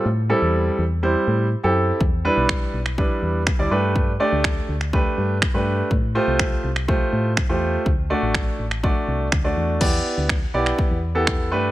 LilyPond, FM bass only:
\new Staff \with { instrumentName = "FM bass" } { \clef bass \time 4/4 \key e \minor \tempo 4 = 123 a,8. e,8. e,4 a,8. fis,8. | e,8. b,,8. b,,4 e,8. d,16 g,8~ | g,8. d,8. d,4 g,8. g,8. | a,8. c,8. c,4 a,8. e,8. |
d,8. a,,8. a,,4 c,8 d,8 e,8 | e,8 r16 d,8. b,,8 r16 e,4~ e,16 g,8 | }